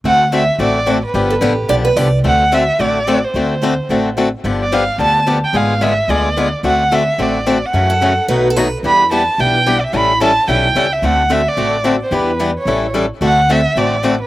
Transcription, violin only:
X:1
M:4/4
L:1/16
Q:"Swing" 1/4=219
K:Dmix
V:1 name="Violin"
f4 e4 d6 B2- | B8- B2 z6 | f4 e4 d6 c2- | c8- c2 z6 |
z2 d2 =f4 a4 z2 g2 | ^e4 =e4 d6 z2 | f4 e4 d6 f2- | f8- f2 z6 |
b4 a4 g4- g3/2 d/2 e2 | b4 a4 g6 e2 | f4 e2 d6 z2 c2 | B4 z2 ^c6 z4 |
f4 e4 d6 B2 |]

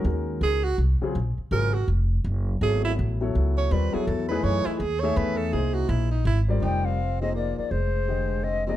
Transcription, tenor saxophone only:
X:1
M:3/4
L:1/8
Q:"Swing" 1/4=164
K:Gblyd
V:1 name="Tenor saxophone"
z2 A G z2 | z2 B G z2 | z2 A _F z2 | z d _c A =A c |
d _F A d _c =A | ^G _G =E ^D E z | [K:Fdor] E C2 C B, B, | A,4 C C |]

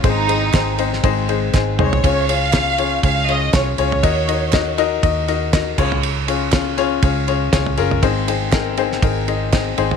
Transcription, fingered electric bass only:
X:1
M:4/4
L:1/8
Q:"Swing 16ths" 1/4=120
K:Db
V:1 name="Fingered electric bass" clef=bass
A,,,2 A,,,2 A,,,2 A,,, C,, | D,,4 D,,2 C,, D,, | E,,4 E,,3 D,,- | D,,4 D,,2 D,, G,,, |
A,,,4 A,,,3 A,,, |]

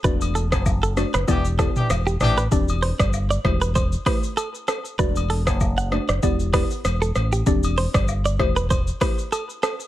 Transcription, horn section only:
X:1
M:4/4
L:1/16
Q:"Swing 16ths" 1/4=97
K:Ador
V:1 name="Horn section"
z8 [E,DG] z2 [E,DG] z2 [E,DG]2 | z16 | z16 | z16 |]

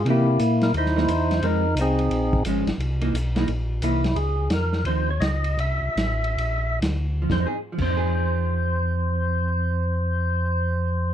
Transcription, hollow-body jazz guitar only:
X:1
M:4/4
L:1/8
Q:"Swing" 1/4=170
K:Fm
V:1 name="Hollow-body jazz guitar"
[=E,B,^D] z4 [E,B,D] z2 | [E,A,C] z4 z [F,A,D] z | z [=E,B,^D] z [E,B,D] z2 [E,B,D] z | z4 [F,CE] z3 |
z8 | [F,CEA] z [F,CEA]6- | [F,CEA]8 |]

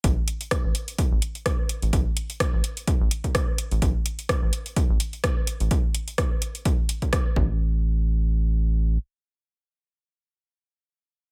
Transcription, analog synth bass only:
X:1
M:4/4
L:1/16
Q:"Swing 16ths" 1/4=127
K:C
V:1 name="Analog synth bass" clef=bass
A,,, z4 A,,, z3 A,,, z4 z A,,, | A,,, z4 A,,, z3 A,,, z4 z A,,, | A,,, z4 A,,, z3 A,,, z4 z A,,, | z12 z2 A,,,2- |
A,,,12 z4 | z16 |]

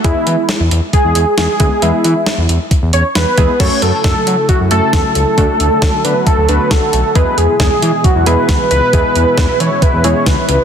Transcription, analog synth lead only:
X:1
M:4/4
L:1/8
Q:1/4=135
K:Emix
V:1 name="Analog synth lead"
E3 z G2 G2 | E3 z2 c B2 | c A A2 F A2 A- | A3 B A B A2 |
B G G2 F B2 B- | B3 c B c B2 |]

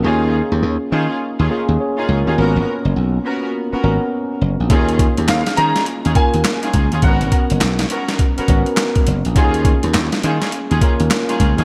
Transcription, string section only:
X:1
M:4/4
L:1/16
Q:"Swing 16ths" 1/4=103
K:G#dor
V:1 name="String section"
[CDEG]2 z4 [CDEG] z2 [CDEG] z3 [CDEG] z [CDEG] | [B,CFA]2 z4 [B,CFA] z2 [B,CFA] z6 | [CDEG]2 z4 [CDEG] z2 [CDEG] z3 [CDEG] z [CDEG] | [B,CFA]2 z4 [B,CFA] z2 [B,CFA] z6 |
[CDEG]2 z4 [CDEG] z2 [CDEG] z3 [CDEG] z [CDEG] |]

